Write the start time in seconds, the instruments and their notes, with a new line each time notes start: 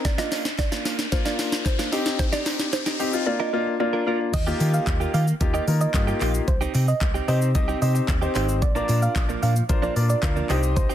Already playing: riser
0.05 synth pluck D5, muted clean electric guitar stroke, kick, snare, closed hi-hat, shaker
0.18 clean electric guitar A#3 D4 F4, synth pluck D#5, snare, shaker
0.31 clean electric guitar A#3 D4 F4, snare, clap, open hi-hat, shaker
0.45 muted clean electric guitar stroke, snare, shaker
0.58 synth pluck D5, muted clean electric guitar stroke, kick, snare, clap, closed hi-hat, shaker
0.72 clean electric guitar A#3 D4 F4, snare, shaker
0.85 clean electric guitar A#3 D4 F4, snare, open hi-hat, shaker
0.99 muted clean electric guitar stroke, snare, shaker
1.12 grand piano A#3 D4 F4, synth pluck C5, muted clean electric guitar stroke, kick, snare, closed hi-hat, shaker
1.25 clean electric guitar A#3 D4 F4, synth pluck D5, snare, shaker
1.39 muted clean electric guitar stroke, snare, open hi-hat, shaker
1.52 muted clean electric guitar stroke, snare, shaker
1.66 synth pluck C5, muted clean electric guitar stroke, kick, snare, clap, closed hi-hat, shaker
1.79 clean electric guitar A#3 D4 F4, snare, shaker
1.92 clean electric guitar C4 D#4 G4, grand piano C4 D#4 G4, snare, open hi-hat, shaker
2.06 muted clean electric guitar stroke, snare, shaker
2.19 synth pluck C5, muted clean electric guitar stroke, kick, snare, closed hi-hat, shaker
2.32 clean electric guitar C4 D#4 G4, synth pluck D5, snare, shaker
2.46 clean electric guitar C4 D#4 G4, snare, clap, open hi-hat, shaker
2.59 muted clean electric guitar stroke, snare, shaker
2.73 synth pluck C5, muted clean electric guitar stroke, snare, clap, closed hi-hat, shaker
2.86 clean electric guitar C4 D#4 G4, snare, shaker
2.99 clean electric guitar C4 D#4 G4, grand piano C4 D#4 G4, open hi-hat, shaker
3.13 grand piano C4 D#4 F4, muted clean electric guitar stroke, shaker
3.26 grand piano A#3 D4 F4, synth pluck D5, muted clean electric guitar stroke
3.40 clean electric guitar D4 F4 A#4, synth pluck D#5
3.53 grand piano A#3 D4 F4, muted clean electric guitar stroke
3.66 muted clean electric guitar stroke
3.80 grand piano A#3 D4 F4, synth pluck D5, muted clean electric guitar stroke
3.93 clean electric guitar D4 F4 A#4
4.06 grand piano A#3 D4 F4, clean electric guitar D4 F4 A#4
4.20 muted clean electric guitar stroke
4.33 fingered electric bass D#2, synth pluck D#5, muted clean electric guitar stroke, kick, closed hi-hat, crash, shaker
4.47 grand piano A#3 D#4 F4 G4, clean electric guitar A#3 F4 G4, shaker
4.60 fingered electric bass D#3, clean electric guitar A#3 F4 G4, clap, open hi-hat, shaker
4.74 synth pluck F5, muted clean electric guitar stroke, shaker
4.87 fingered electric bass D#2, muted clean electric guitar stroke, kick, clap, closed hi-hat, shaker
5.00 clean electric guitar A#3 F4 G4, shaker
5.14 fingered electric bass D#3, clean electric guitar A#3 F4 G4, synth pluck F5, open hi-hat, shaker
5.27 muted clean electric guitar stroke, shaker
5.40 fingered electric bass D#2, grand piano A#3 D#4 F4 G4, muted clean electric guitar stroke, kick, closed hi-hat, shaker
5.54 clean electric guitar A#3 F4 G4, synth pluck D#5, shaker
5.67 fingered electric bass D#3, grand piano A#3 D#4 F4 A#4, open hi-hat, shaker
5.81 synth pluck D#5, muted clean electric guitar stroke, shaker
5.94 fingered electric bass G2, grand piano A#3 D#4 F4 G4, muted clean electric guitar stroke, kick, clap, closed hi-hat, shaker
6.07 clean electric guitar A#3 F4 G4, shaker
6.21 fingered electric bass A#1, clean electric guitar A#3 F4 G4, clap, open hi-hat, shaker
6.34 muted clean electric guitar stroke, shaker
6.47 fingered electric bass C2, synth pluck C5, muted clean electric guitar stroke, kick, closed hi-hat, shaker
6.61 clean electric guitar C4 D#4 G4, shaker
6.74 fingered electric bass C3, clean electric guitar C4 D#4 G4, clap, open hi-hat, shaker
6.88 synth pluck D#5, muted clean electric guitar stroke, shaker
7.01 fingered electric bass C2, muted clean electric guitar stroke, kick, clap, closed hi-hat, shaker
7.14 clean electric guitar C4 D#4 G4, shaker
7.28 fingered electric bass C3, clean electric guitar C4 D#4 G4, grand piano C4 D#4 G4 C5, synth pluck D#5, open hi-hat, shaker
7.41 muted clean electric guitar stroke, shaker
7.55 fingered electric bass C2, grand piano C4 D#4 G4 D#5, muted clean electric guitar stroke, kick, closed hi-hat, shaker
7.68 clean electric guitar C4 D#4 G4, shaker
7.81 fingered electric bass C3, grand piano C4 D#4 G4 C5, synth pluck D#5, muted clean electric guitar stroke, open hi-hat, shaker
7.95 muted clean electric guitar stroke, shaker
8.08 fingered electric bass D#2, muted clean electric guitar stroke, kick, clap, closed hi-hat, shaker
8.21 grand piano C4 D#4 G4 C5, clean electric guitar C4 D#4 G4, shaker
8.35 fingered electric bass G#1, clean electric guitar C4 D#4 G4, synth pluck C5, clap, open hi-hat, shaker
8.48 muted clean electric guitar stroke, shaker
8.62 fingered electric bass A#1, synth pluck D5, muted clean electric guitar stroke, kick, closed hi-hat, shaker
8.75 clean electric guitar F3 A#3 D4, grand piano D4 F4 A#4 D5, shaker
8.88 fingered electric bass A#2, clean electric guitar F3 A#3 D4, clap, open hi-hat, shaker
9.02 synth pluck F5, muted clean electric guitar stroke, shaker
9.15 fingered electric bass A#1, muted clean electric guitar stroke, kick, clap, closed hi-hat, shaker
9.29 clean electric guitar F3 A#3 D4, shaker
9.42 fingered electric bass A#2, clean electric guitar F3 A#3 D4, synth pluck F5, open hi-hat, shaker
9.56 muted clean electric guitar stroke, shaker
9.69 fingered electric bass A#1, grand piano D4 F4 A#4 C5, muted clean electric guitar stroke, kick, closed hi-hat, shaker
9.82 clean electric guitar F3 A#3 D4, synth pluck D5, shaker
9.96 fingered electric bass A#2, grand piano D4 F4 A#4 D5, muted clean electric guitar stroke, open hi-hat, shaker
10.09 synth pluck D5, muted clean electric guitar stroke, shaker
10.23 fingered electric bass D2, grand piano D4 F4 A#4 F5, muted clean electric guitar stroke, kick, clap, closed hi-hat, shaker
10.36 clean electric guitar F3 A#3 D4, shaker
10.49 fingered electric bass C2, clean electric guitar C4 D#4 G4, grand piano D#4 G4 C5 D#5, clap, open hi-hat, shaker
10.63 muted clean electric guitar stroke, shaker
10.76 synth pluck C5, muted clean electric guitar stroke, kick, closed hi-hat, shaker
10.89 clean electric guitar C4 D#4 G4, shaker